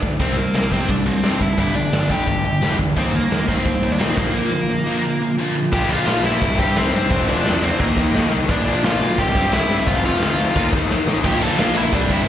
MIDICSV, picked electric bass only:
0, 0, Header, 1, 2, 480
1, 0, Start_track
1, 0, Tempo, 345026
1, 277, Time_signature, 4, 2, 24, 8
1, 17085, End_track
2, 0, Start_track
2, 0, Title_t, "Picked electric bass"
2, 0, Program_c, 0, 34
2, 31, Note_on_c, 0, 38, 80
2, 203, Note_off_c, 0, 38, 0
2, 273, Note_on_c, 0, 36, 91
2, 613, Note_off_c, 0, 36, 0
2, 750, Note_on_c, 0, 36, 80
2, 1092, Note_off_c, 0, 36, 0
2, 1239, Note_on_c, 0, 36, 96
2, 1409, Note_off_c, 0, 36, 0
2, 1484, Note_on_c, 0, 36, 92
2, 1652, Note_off_c, 0, 36, 0
2, 1717, Note_on_c, 0, 43, 92
2, 2057, Note_off_c, 0, 43, 0
2, 2197, Note_on_c, 0, 31, 95
2, 2537, Note_off_c, 0, 31, 0
2, 2685, Note_on_c, 0, 31, 88
2, 3022, Note_off_c, 0, 31, 0
2, 3159, Note_on_c, 0, 31, 91
2, 3499, Note_off_c, 0, 31, 0
2, 3650, Note_on_c, 0, 29, 95
2, 3817, Note_off_c, 0, 29, 0
2, 3885, Note_on_c, 0, 40, 75
2, 4054, Note_off_c, 0, 40, 0
2, 4126, Note_on_c, 0, 39, 92
2, 4464, Note_off_c, 0, 39, 0
2, 4609, Note_on_c, 0, 39, 89
2, 4946, Note_off_c, 0, 39, 0
2, 5084, Note_on_c, 0, 39, 94
2, 5254, Note_off_c, 0, 39, 0
2, 5320, Note_on_c, 0, 39, 99
2, 5492, Note_off_c, 0, 39, 0
2, 5558, Note_on_c, 0, 46, 83
2, 5731, Note_off_c, 0, 46, 0
2, 5806, Note_on_c, 0, 34, 83
2, 5976, Note_off_c, 0, 34, 0
2, 7964, Note_on_c, 0, 34, 98
2, 8146, Note_off_c, 0, 34, 0
2, 8207, Note_on_c, 0, 34, 91
2, 8387, Note_off_c, 0, 34, 0
2, 8433, Note_on_c, 0, 34, 94
2, 8618, Note_off_c, 0, 34, 0
2, 8681, Note_on_c, 0, 34, 101
2, 8864, Note_off_c, 0, 34, 0
2, 8926, Note_on_c, 0, 36, 97
2, 9107, Note_off_c, 0, 36, 0
2, 9164, Note_on_c, 0, 43, 95
2, 9346, Note_off_c, 0, 43, 0
2, 9389, Note_on_c, 0, 36, 97
2, 9575, Note_off_c, 0, 36, 0
2, 9637, Note_on_c, 0, 43, 83
2, 9821, Note_off_c, 0, 43, 0
2, 9886, Note_on_c, 0, 29, 105
2, 10066, Note_off_c, 0, 29, 0
2, 10102, Note_on_c, 0, 29, 92
2, 10291, Note_off_c, 0, 29, 0
2, 10352, Note_on_c, 0, 40, 94
2, 10716, Note_off_c, 0, 40, 0
2, 10851, Note_on_c, 0, 39, 108
2, 11029, Note_off_c, 0, 39, 0
2, 11088, Note_on_c, 0, 39, 105
2, 11267, Note_off_c, 0, 39, 0
2, 11315, Note_on_c, 0, 39, 90
2, 11499, Note_off_c, 0, 39, 0
2, 11556, Note_on_c, 0, 36, 90
2, 11739, Note_off_c, 0, 36, 0
2, 11814, Note_on_c, 0, 34, 102
2, 11990, Note_off_c, 0, 34, 0
2, 12039, Note_on_c, 0, 34, 83
2, 12221, Note_off_c, 0, 34, 0
2, 12283, Note_on_c, 0, 34, 97
2, 12463, Note_off_c, 0, 34, 0
2, 12521, Note_on_c, 0, 35, 97
2, 12702, Note_off_c, 0, 35, 0
2, 12778, Note_on_c, 0, 36, 105
2, 12952, Note_off_c, 0, 36, 0
2, 13006, Note_on_c, 0, 43, 108
2, 13185, Note_off_c, 0, 43, 0
2, 13248, Note_on_c, 0, 36, 101
2, 13426, Note_off_c, 0, 36, 0
2, 13481, Note_on_c, 0, 43, 95
2, 13661, Note_off_c, 0, 43, 0
2, 13733, Note_on_c, 0, 29, 99
2, 13909, Note_off_c, 0, 29, 0
2, 13954, Note_on_c, 0, 29, 92
2, 14136, Note_off_c, 0, 29, 0
2, 14178, Note_on_c, 0, 38, 95
2, 14545, Note_off_c, 0, 38, 0
2, 14691, Note_on_c, 0, 39, 104
2, 14866, Note_off_c, 0, 39, 0
2, 14921, Note_on_c, 0, 39, 104
2, 15100, Note_off_c, 0, 39, 0
2, 15151, Note_on_c, 0, 39, 99
2, 15333, Note_off_c, 0, 39, 0
2, 15386, Note_on_c, 0, 33, 81
2, 15570, Note_off_c, 0, 33, 0
2, 15643, Note_on_c, 0, 34, 97
2, 15820, Note_off_c, 0, 34, 0
2, 15878, Note_on_c, 0, 34, 87
2, 16057, Note_off_c, 0, 34, 0
2, 16096, Note_on_c, 0, 34, 98
2, 16283, Note_off_c, 0, 34, 0
2, 16346, Note_on_c, 0, 34, 93
2, 16529, Note_off_c, 0, 34, 0
2, 16586, Note_on_c, 0, 36, 102
2, 16769, Note_off_c, 0, 36, 0
2, 16826, Note_on_c, 0, 43, 100
2, 17009, Note_off_c, 0, 43, 0
2, 17085, End_track
0, 0, End_of_file